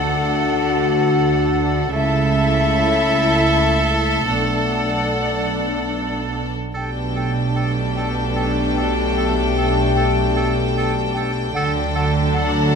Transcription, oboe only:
Already playing: A4
1.93 A4
6.74 A4
7.16 A4
7.56 A4
7.97 A4
8.36 A4
8.78 A4
9.18 A4
9.58 A4
9.97 A4
10.37 A4
10.77 A4
11.17 A4
11.56 A4
11.96 A4
12.36 A4

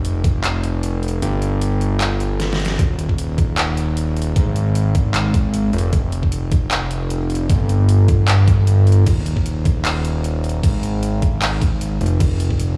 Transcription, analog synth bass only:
Already playing: F1
1.22 G1
2.79 D#1
4.36 G#1
5.73 F1
7.50 G1
9.06 D#1
10.63 G#1
12.01 F1

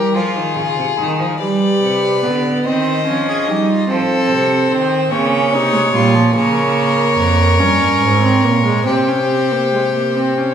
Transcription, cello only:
Already playing: G3
0.15 F3
0.36 D#3
0.56 C#3
0.78 C3
0.99 D#3
1.20 F3
1.41 G3
1.83 C3
2.24 D3
2.66 D#3
3.07 F3
3.48 G3
3.90 F3
4.30 C3
4.71 D#3
5.12 C#3
5.53 C3
5.94 A#2
6.35 C#3
7.18 F2
7.60 G2
8.02 G#2
8.44 A#2
8.87 C3

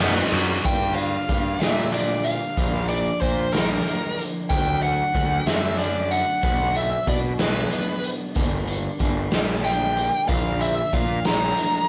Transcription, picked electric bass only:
Already playing: F#2
0.32 F#2
0.65 G2
1.29 G2
1.61 A#2
2.57 A#1
3.22 A#2
3.54 A#1
4.50 D2
5.15 D2
5.46 F#2
6.43 B1
7.07 B2
7.40 B1
8.36 G1
9.00 G1
9.33 A#1
10.29 A#1
10.93 A#2
11.26 A#1

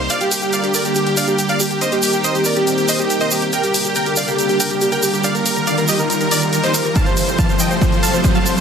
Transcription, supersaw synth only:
0.10 D5 F5
0.21 G4
0.32 G4
0.42 G4
0.53 D5 F5
0.63 G4
0.74 A#4 D5
0.85 G4
0.96 G4
1.06 G4
1.17 D5 F5
1.28 G4
1.38 G4
1.49 D5 F5
1.60 G4
1.71 G4
1.81 C5 D#5
1.92 G4
2.03 G4
2.13 G4
2.24 C5 D#5
2.35 G4
2.45 A#4 D5
2.56 G4
2.67 G4
2.78 G4
2.89 C5 D#5
2.99 G4
3.10 G4
3.21 C5 D#5
3.31 G4
3.42 G4
3.53 A#4 G5
3.63 G4
3.74 G4
3.85 G4
3.96 A#4 G5
4.06 G4
4.17 D5 F5
4.28 G4
4.38 G4
4.49 G4
4.60 A#4 G5
4.71 G4
4.81 G4
4.92 A#4 G5
5.03 G4
5.13 G4
5.24 D5 F5
5.35 A#4
5.46 A#4
5.56 A#4
5.67 D5 F5
5.78 A#4
5.89 G4 D#5
5.99 A#4
6.10 A#4
6.21 A#4
6.31 A#4 D5
6.42 A#4
6.53 A#4
6.63 D#4 C5
6.74 A#4
6.85 A#4
6.95 F5 A5
7.06 C5
7.17 C5
7.28 C5
7.38 F5 A5
7.49 C5
7.60 D#5 G5
7.71 C5
7.81 C5
7.92 C5
8.03 F5 A5
8.14 C5
8.24 C5
8.35 F5 A5
8.46 C5
8.57 C5

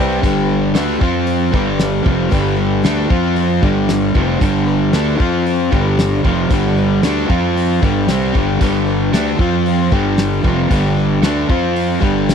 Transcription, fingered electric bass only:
Already playing: C2
0.23 G1
0.75 D2
1.01 F2
1.53 G1
2.06 F1
2.32 G1
2.85 D2
3.10 F2
3.62 G1
4.16 F1
4.41 G1
4.94 D2
5.20 F2
5.72 G1
6.25 F1
6.50 G1
7.03 D2
7.29 F2
7.82 G1
8.08 C2
8.35 G1
8.61 G1
9.13 D2
9.39 F2
9.92 G1
10.44 F1
10.71 G1
11.22 D2
11.49 F2
12.02 G1

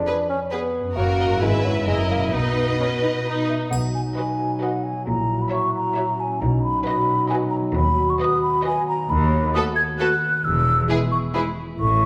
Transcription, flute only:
3.49 E5
3.70 F#5
3.95 G#5
4.17 G#5
4.63 F#5
4.84 G#5
5.08 A#5
5.42 B5
5.53 C#6
5.75 A#5
6.20 G#5
6.41 A#5
6.63 B5
6.85 B5
7.30 G#5
7.50 A#5
7.75 B5
8.10 C#6
8.20 D#6
8.42 B5
8.65 G#5
8.88 A#5
9.10 B5
9.54 D#6
9.76 G#6
9.98 F#6
10.45 E6
11.12 C#6
11.34 B5
11.80 C#6

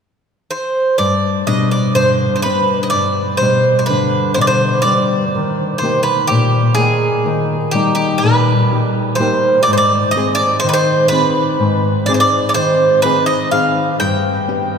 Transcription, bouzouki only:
0.51 C5
0.98 D5
1.47 D#5
1.71 D5
1.95 C5
2.36 C5
2.42 B4
2.83 D#5
2.90 D5
3.37 C5
3.79 C5
3.86 B4
4.34 C5
4.41 D5
4.47 C5
4.82 D5
5.78 C5
6.03 B4
6.27 G4
6.75 G#4
7.71 G4
7.95 G4
8.18 B4
9.15 C5
9.63 D5
9.73 C5
9.77 D5
10.11 D#5
10.35 D5
10.60 C5
10.69 B4
10.74 C5
11.08 B4
12.06 D5
12.14 C5
12.20 D5
12.49 D5
12.54 C5
13.02 B4
13.26 D#5
13.51 F5
14.00 G5

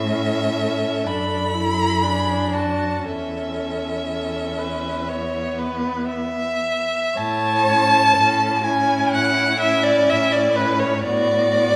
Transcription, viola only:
0.06 C#4
1.04 D4
1.53 E4
2.03 D4
3.05 C#4
5.08 B3
7.67 C#4
8.64 C#4
9.60 C#4
10.57 C#4
11.06 B3
11.53 B3

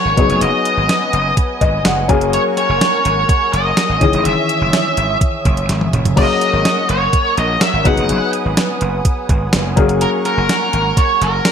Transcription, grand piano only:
Already playing: F#3 A#3 C#4 G#4
0.16 F#3 B3 D#4 G#4
1.61 D#5
1.85 F#5
2.08 F#3 A#3 C#4 G#4 G#5
4.00 D#3 E3 C#4 G#4
6.16 F#3 A#3 C#4 G#4
7.84 F#3 B3 D#4 G#4
9.76 F#3 A#3 C#4 G#4

